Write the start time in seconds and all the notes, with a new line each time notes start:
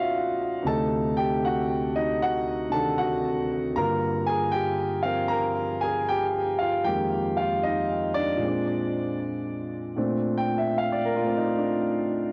Already playing: B2 A#3 C#4 D#4 F4 F#4 C#5 D#5 E5 F5 F#5
0.62 D2 C3 A3
0.67 D#4 A4 A5
1.17 G4 G5
1.45 F#4 F#5
1.96 D#4 D#5
2.23 F#4 F#5
2.70 C3 D#3 D4 A5
2.74 A4
2.98 F#4 F#5
3.76 G2 D3 A#3 F4 A#4 A#5
4.26 G#4 G#5
4.52 G4 G5
5.02 F3 C4 F4 A#4 F5
5.28 A#4 A#5
5.81 G#4 G#5
6.09 G4 G5
6.59 F4 F5
6.85 F2 D#3 G#3 A#3 G4 G5
7.37 F4 F5
7.63 D#4 D#5
8.14 D4 D5
8.37 A#2 G#3
8.44 C4
8.48 D4
9.96 A#2 A3 C4 D4
10.38 G5
10.58 E5
10.78 F5
10.92 D5
11.05 A#4
11.16 F4
11.23 A3 C4
11.37 D#4
11.59 D4